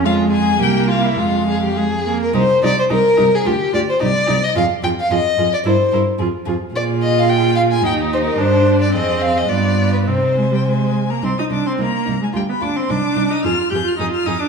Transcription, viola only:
X:1
M:2/4
L:1/16
Q:1/4=109
K:Fm
V:1 name="Viola"
A,4 B,4 | A,4 A,2 B,2 | [K:Cm] E2 E2 E2 E2 | F2 F2 E2 E2 |
F2 F2 F2 F2 | =E2 E2 F2 F2 | F8 | E4 D4 |
C4 =B,4 | C2 A, G, A,3 B, | C E D C B,3 A, | G, =B, D C D3 E |
F2 G F E F E D |]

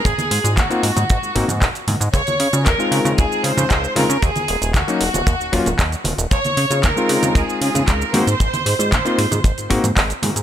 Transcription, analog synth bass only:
X:1
M:4/4
L:1/16
Q:1/4=115
K:Db
V:1 name="Analog synth bass" clef=bass
A,,, z A,, A,, A,,, z A,, A,, A,,, A,, A,, A,, A,,, z A,, A,, | D,, z D, D, D,, z D, D, D,, z D, D, D,, z D, D, | E,, z E,,, E,,, E,, z E,,, E,,, E,, E,,, E,,, E,,, E,, z E,,, E,,, | D,, z D, D, D,, z D, D, D,, z D, D, D,, z A,, A,, |
A,,, z A,, A,, A,,, z A,, A,, A,,, A,, A,, A,, A,,, z A,, A,, |]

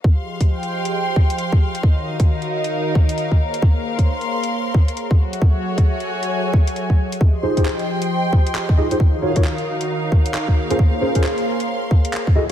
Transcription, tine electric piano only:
X:1
M:4/4
L:1/16
Q:"Swing 16ths" 1/4=134
K:Fphr
V:1 name="Tine electric piano"
z16 | z16 | z16 | z16 |
z2 [EF=GAc] [EFGAc] z8 z2 [EFGAe] [EFGAc] | z2 [EFGBd] [EFGBd] z8 z3 [DFABc] | z2 [DFABc] [DFABc] z8 z2 [_FGA=Ae] z |]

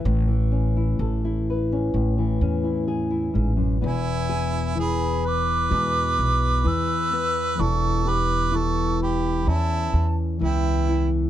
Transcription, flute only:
X:1
M:4/4
L:1/16
Q:1/4=64
K:Emix
V:1 name="Flute"
z16 | g4 b2 d'6 e'4 | c'2 d'2 c'2 b2 a2 z2 =g3 z |]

